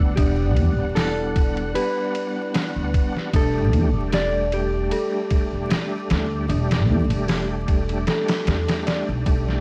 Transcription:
Already playing: D2 G3 B3 D4 G4 B4 D5 F#5 E6
0.16 E1 G3 B3 D4 G4 F#5 F#6, kick, ride
0.57 E2, ride
0.77 E1 G3 B3 D4
0.81 F#5
0.95 E4 A4, snare, open hi-hat
1.36 kick, ride
1.57 ride
1.75 G4 B4, ride
2.15 ride
2.54 B4, snare, ride
2.76 D2
2.94 kick, ride
3.17 snare
3.32 E1 G3 A3 D4 G4 A4 D6, kick, ride
3.73 E2, ride
3.93 E1 G3 A3 D4
3.97 G4
4.12 G4 D5, snare, ride
4.52 G4, ride
4.91 A4, ride
5.30 kick, ride
5.53 E1
5.70 D5, snare, ride
6.10 D2, snare, ride
6.49 E1 G3 A3 D4 G4, ride
6.71 snare, ride
6.90 E2
7.09 E1 G3 A3 D4, ride
7.13 G4
7.28 G4, snare, open hi-hat
7.68 kick, ride
7.89 ride
8.07 A4, snare, ride
8.28 snare, ride
8.47 E2, snare, ride
8.68 snare, ride
8.86 D5, snare, ride
9.09 B1
9.26 G3 A3 D4 G4, kick, ride
9.48 snare

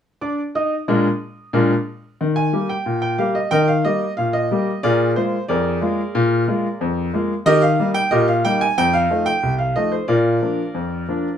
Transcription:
0.21 D4 D5 D6
0.55 D#4 D#5 D#6
0.88 A#2 G#3 D4 A#4
1.53 A#2 G#3 D4 A#4
2.21 D#3
2.36 G#5
2.53 G3 A#3 G4
2.69 G5
2.86 A#2
3.02 G5
3.18 G3 A#3 G4 F5
3.35 D#5
3.51 D#3 A#4 D#5 G5
3.68 F5
3.85 G3 A#3 G4 D#5
4.17 A#2 F5
4.33 D#5
4.51 G3 A#3 G4
4.83 A#2 G#4 A#4 D5
5.16 G#3 A#3 F4 C5
5.48 F2 G#4 A#4 D5
5.82 G#3 A#3 F4
6.15 A#2
6.48 G#3 A#3 F4
6.81 F2
7.14 G#3 A#3 F4
7.46 D#3 G4 A#4 D#5
7.62 F5
7.80 G3 A#3 D#4
7.94 G5
8.11 A#2 G4 A#4 D#5
8.28 F5
8.45 G3 A#3 D#4 G5
8.61 G#5
8.78 F2 G5
8.93 F5
9.10 F3 A3 D#4
9.26 G5
9.43 C2
9.58 F5
9.76 F3 A3 D#4 D#5
9.92 C5
10.08 A#2 F4 A#4 D5
10.42 F3 A#3 D4
10.74 F2
11.08 F3 A#3 D4

